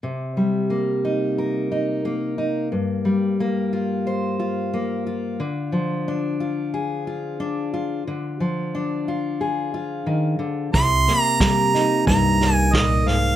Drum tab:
SD |--------|--------|--------|--------|
BD |--------|--------|--------|--------|

SD |oooooooo|
BD |o-o-o-o-|